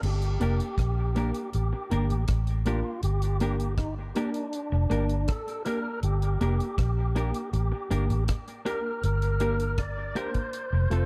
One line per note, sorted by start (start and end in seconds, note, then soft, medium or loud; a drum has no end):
0.03 0.38 G1 medium
0.03 1.50 G4 medium
0.03 crash medium
0.22 closed hi-hat medium
0.40 0.58 F1 medium
0.40 0.60 A#3 medium
0.40 0.54 A#3 medium
0.40 0.60 D4 medium
0.40 0.54 D4 medium
0.40 0.60 G4 medium
0.40 0.55 G4 loud
0.40 0.61 A#4 loud
0.40 0.55 A#4 loud
0.40 closed hi-hat medium
0.60 closed hi-hat medium
0.78 1.31 A#1 medium
0.78 kick loud
0.78 cross-stick loud
0.78 closed hi-hat medium
1.15 1.35 A#3 medium
1.15 1.29 A#3 medium
1.15 1.35 D4 medium
1.15 1.29 D4 medium
1.15 1.36 G4 medium
1.15 1.30 G4 medium
1.15 1.36 A#4 loud
1.15 1.30 A#4 medium
1.15 closed hi-hat medium
1.34 closed hi-hat medium
1.53 1.71 A1 loud
1.53 2.25 G4 medium
1.53 closed hi-hat medium
1.73 muted clean electric guitar stroke soft
1.90 2.09 G1 loud
1.90 2.10 A#3 medium
1.90 2.04 A#3 medium
1.90 2.10 D4 medium
1.90 2.04 D4 medium
1.90 2.11 G4 medium
1.90 2.05 G4 medium
1.90 2.11 A#4 loud
1.90 2.05 A#4 medium
1.90 closed hi-hat medium
2.10 2.27 A1 medium
2.10 closed hi-hat soft
2.28 2.81 A1 medium
2.28 kick loud
2.28 cross-stick loud
2.28 closed hi-hat loud
2.47 closed hi-hat soft
2.65 2.85 A#3 medium
2.65 2.79 A#3 medium
2.65 2.86 D4 medium
2.65 2.79 D4 medium
2.65 3.01 F4 medium
2.65 2.86 G4 medium
2.65 2.80 G4 medium
2.65 2.86 A#4 loud
2.65 2.80 A#4 medium
2.65 closed hi-hat medium
3.03 4.12 G1 medium
3.03 3.75 G4 medium
3.03 closed hi-hat medium
3.22 closed hi-hat medium
3.40 3.60 A#3 medium
3.40 3.54 A#3 medium
3.40 3.60 D4 medium
3.40 3.54 D4 medium
3.40 3.61 G4 medium
3.40 3.55 G4 medium
3.40 3.61 A#4 loud
3.40 3.55 A#4 medium
3.40 closed hi-hat medium
3.60 closed hi-hat medium
3.78 3.95 D#4 medium
3.78 kick loud
3.78 cross-stick loud
3.78 closed hi-hat medium
4.15 4.35 A#3 medium
4.15 4.29 A#3 medium
4.15 4.36 D4 medium
4.15 5.32 D4 medium
4.15 4.29 D4 medium
4.15 4.36 G4 medium
4.15 4.29 G4 medium
4.15 4.36 A#4 loud
4.15 4.30 A#4 medium
4.15 closed hi-hat medium
4.34 closed hi-hat medium
4.53 closed hi-hat medium
4.72 4.89 F1 medium
4.72 muted clean electric guitar stroke soft
4.90 5.26 G1 medium
4.90 5.10 A#3 medium
4.90 5.04 A#3 medium
4.90 5.10 D4 medium
4.90 5.04 D4 medium
4.90 5.10 G4 medium
4.90 5.04 G4 medium
4.90 5.11 A#4 medium
4.90 5.05 A#4 medium
4.90 closed hi-hat medium
5.09 closed hi-hat soft
5.28 5.63 A4 loud
5.28 kick loud
5.28 cross-stick loud
5.28 closed hi-hat loud
5.48 closed hi-hat soft
5.65 5.85 A#3 medium
5.65 5.79 A#3 medium
5.65 5.85 D4 medium
5.65 5.79 D4 medium
5.65 5.86 G4 medium
5.65 5.80 G4 medium
5.65 6.00 A#4 loud
5.65 5.86 A#4 medium
5.65 5.80 A#4 medium
5.65 closed hi-hat medium
6.03 6.38 G1 loud
6.03 7.50 G4 loud
6.03 closed hi-hat medium
6.22 closed hi-hat medium
6.40 6.59 F1 medium
6.40 6.61 A#3 medium
6.40 6.54 A#3 medium
6.40 6.61 D4 medium
6.40 6.54 D4 medium
6.40 6.61 G4 medium
6.40 6.55 G4 medium
6.40 6.61 A#4 loud
6.40 6.55 A#4 medium
6.40 closed hi-hat medium
6.60 closed hi-hat medium
6.78 7.31 A#1 medium
6.78 kick loud
6.78 cross-stick loud
6.78 closed hi-hat medium
7.15 7.35 A#3 loud
7.15 7.29 A#3 medium
7.15 7.36 D4 medium
7.15 7.29 D4 medium
7.15 7.36 G4 medium
7.15 7.30 G4 medium
7.15 7.36 A#4 loud
7.15 7.30 A#4 medium
7.15 closed hi-hat medium
7.34 closed hi-hat medium
7.53 7.71 A1 loud
7.53 8.24 G4 medium
7.53 closed hi-hat medium
7.72 muted clean electric guitar stroke soft
7.90 8.09 G1 loud
7.90 8.11 A#3 medium
7.90 8.04 A#3 medium
7.90 8.04 D4 medium
7.90 8.11 D4 medium
7.90 8.11 G4 medium
7.90 8.05 G4 medium
7.90 8.11 A#4 loud
7.90 8.05 A#4 medium
7.90 closed hi-hat medium
8.10 8.27 A1 medium
8.10 closed hi-hat medium
8.28 kick loud
8.28 cross-stick loud
8.28 closed hi-hat loud
8.48 closed hi-hat soft
8.65 8.85 A#3 medium
8.65 8.79 A#3 medium
8.65 8.86 D4 medium
8.65 8.79 D4 medium
8.65 8.86 G4 medium
8.65 8.79 G4 medium
8.65 8.86 A#4 loud
8.65 9.03 A#4 medium
8.65 8.80 A#4 medium
8.65 closed hi-hat medium
9.04 10.12 G1 medium
9.04 9.81 A#4 medium
9.04 closed hi-hat medium
9.22 closed hi-hat soft
9.40 9.61 A#3 medium
9.40 9.54 A#3 medium
9.40 9.61 D4 medium
9.40 9.54 D4 medium
9.40 9.61 G4 medium
9.40 9.54 G4 medium
9.40 9.61 A#4 loud
9.40 9.55 A#4 medium
9.40 closed hi-hat medium
9.60 closed hi-hat medium
9.78 10.17 D5 loud
9.78 kick loud
9.78 cross-stick loud
9.78 closed hi-hat medium
10.15 10.36 A#3 medium
10.15 10.29 A#3 medium
10.15 10.36 D4 medium
10.15 10.29 D4 medium
10.15 10.36 G4 medium
10.15 10.29 G4 medium
10.15 10.36 A#4 loud
10.15 10.30 A#4 loud
10.15 11.05 C5 medium
10.15 closed hi-hat medium
10.34 kick medium
10.34 closed hi-hat medium
10.53 closed hi-hat medium
10.73 10.90 F1 loud
10.90 11.05 F1 medium
10.90 11.05 A3 medium
10.90 11.04 A3 medium
10.90 11.05 C4 medium
10.90 11.05 F4 medium
10.90 11.05 A4 loud
10.90 11.05 A4 medium
10.90 closed hi-hat medium